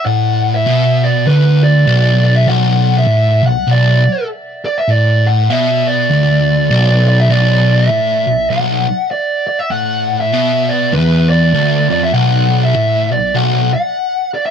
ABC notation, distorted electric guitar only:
X:1
M:4/4
L:1/8
Q:"Swing" 1/4=99
K:Bm
V:1 name="Distorted electric guitar" clef=bass
A,,2 B,,2 D,,2 B,,,2 | B,,,2 A,, B,,, B,,, z3 | A,,2 B,,2 D,,2 B,,,2 | B,,,2 A,, B,,, B,,, z3 |
A,,2 B,,2 E,,2 D,, ^E,, | B,,,2 A,, B,,, B,,, z3 |]